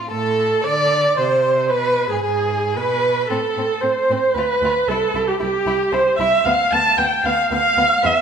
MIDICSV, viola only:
0, 0, Header, 1, 2, 480
1, 0, Start_track
1, 0, Key_signature, 0, "minor"
1, 0, Tempo, 529101
1, 96, Time_signature, 3, 2, 24, 8
1, 7453, End_track
2, 0, Start_track
2, 0, Title_t, "Viola"
2, 0, Program_c, 0, 41
2, 98, Note_on_c, 0, 69, 74
2, 582, Note_on_c, 0, 74, 76
2, 596, Note_off_c, 0, 69, 0
2, 1063, Note_on_c, 0, 72, 72
2, 1076, Note_off_c, 0, 74, 0
2, 1543, Note_on_c, 0, 71, 85
2, 1557, Note_off_c, 0, 72, 0
2, 1895, Note_off_c, 0, 71, 0
2, 1900, Note_on_c, 0, 68, 60
2, 2015, Note_off_c, 0, 68, 0
2, 2021, Note_on_c, 0, 68, 68
2, 2495, Note_off_c, 0, 68, 0
2, 2518, Note_on_c, 0, 71, 86
2, 2977, Note_off_c, 0, 71, 0
2, 2983, Note_on_c, 0, 69, 81
2, 3457, Note_on_c, 0, 72, 77
2, 3471, Note_off_c, 0, 69, 0
2, 3941, Note_on_c, 0, 71, 86
2, 3955, Note_off_c, 0, 72, 0
2, 4427, Note_on_c, 0, 69, 86
2, 4440, Note_off_c, 0, 71, 0
2, 4788, Note_on_c, 0, 67, 72
2, 4802, Note_off_c, 0, 69, 0
2, 4904, Note_off_c, 0, 67, 0
2, 4908, Note_on_c, 0, 67, 78
2, 5376, Note_on_c, 0, 72, 81
2, 5390, Note_off_c, 0, 67, 0
2, 5607, Note_off_c, 0, 72, 0
2, 5613, Note_on_c, 0, 76, 87
2, 5852, Note_on_c, 0, 77, 84
2, 5866, Note_off_c, 0, 76, 0
2, 6100, Note_on_c, 0, 81, 94
2, 6113, Note_off_c, 0, 77, 0
2, 6330, Note_on_c, 0, 79, 79
2, 6343, Note_off_c, 0, 81, 0
2, 6583, Note_on_c, 0, 77, 79
2, 6597, Note_off_c, 0, 79, 0
2, 6816, Note_off_c, 0, 77, 0
2, 6828, Note_on_c, 0, 77, 100
2, 7310, Note_on_c, 0, 76, 87
2, 7323, Note_off_c, 0, 77, 0
2, 7453, Note_off_c, 0, 76, 0
2, 7453, End_track
0, 0, End_of_file